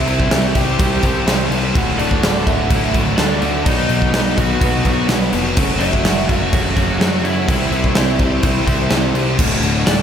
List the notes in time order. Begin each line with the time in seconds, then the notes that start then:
Already playing: C3 G3 C4 E4 G4 C5 E5 C6
0.07 C2 G4 C5, crash
0.11 C4 E4
0.20 kick
0.30 C2 C4 E4 G4, snare, crash
0.34 C5
0.55 C2 E4 G4 C5 G5, kick, crash
0.59 C4
0.79 C2 C3 G3 C4 E4 G4 C5, kick, crash
1.03 C2 C4 E4 G4 C5, kick, crash
1.26 C2 C3 G3 C4 E4 G4 C5, snare, crash
1.50 C2 E4 G4 C5, crash
1.54 C4
1.74 D1 D2 A2 D3 A3 F#4 A4 D5 F#5 D6, kick, crash
1.98 D1 D3 A3 D4 F#4 D5, crash
2.11 kick
2.22 D1 A2 D3 A3 F#4, snare, crash
2.45 D1 D3 A3 E4 F#4 E5, kick, crash
2.69 D1 D2 A2 D3 A3 F#4, kick, crash
2.94 D1 D3 A3 F#4, kick, crash
3.18 D2 A2 D3 A3 D4 F#4 D5, snare, crash
3.42 D2 D3 A3 F#4, crash
3.63 B1 B2 F#3 B3 D#4 B4 D#5 D#6, kick, crash
3.68 D#4 F#4 B4
3.89 B1 B3 D#4 F#4 B4, crash
4.02 kick
4.12 B1 B3 D#4 F#4 B4, snare, crash
4.36 B1 B3 D#4 F#4 B4 F#5, kick, crash
4.60 B1 B2 F#3 B3 D#4 F#4 B4, kick, crash
4.84 B1 B3 D#4 F#4 B4, kick, crash
5.08 B1 B2 F#3 B3 D#4 F#4 B4, snare, crash
5.32 F1 B3 D#4 F#4 B4, crash
5.56 F#1 F#2 C#3 F#3 A3 C#4 F#4 A4 C#5 C#6, kick, crash
5.80 F#1 F#3 A3 C#4 E4 F#4 E5, crash
5.93 kick
6.04 F#1 F#3 A3 C#4 F#4, snare, crash
6.27 F#1 A3 C#4 F#4 F#5, kick, crash
6.32 F#3
6.52 F#1 F#2 C#3 F#3 A3 C#4 F#4, kick, crash
6.76 F#1 F#3 A3 C#4 F#4, kick, crash
7.00 F#2 C#3 F#3 A3 C#4 F#4 F#5, snare, crash
7.23 F#2 F#3 A3 C#4 E4 F#4 E5, crash
7.47 C2 C3 G3 C4 E4 G4 C5 E5 C6, kick, crash
7.70 C2 C4 E4 G4 C5, crash
7.84 kick
7.94 C2 C4 E4 G4 C5, snare, crash
8.19 C2 C4 E4 G4 C5, kick, crash
8.43 C2 C3 G3 C4 E4 G4 C5, kick, crash
8.66 C2 C4 E4 G4 C5, kick, crash
8.90 C2 C3 G3 C4 E4 G4 C5, snare, crash
9.14 C2 C4 E4 G4 C5, crash
9.39 D1 D2 A2 D3 A3 F#4 A4 D5 F#5 D6, kick, crash
9.62 D1 D3 A3 F#4, crash
9.86 D1 A2 D3 A3 F#4 D5, snare, crash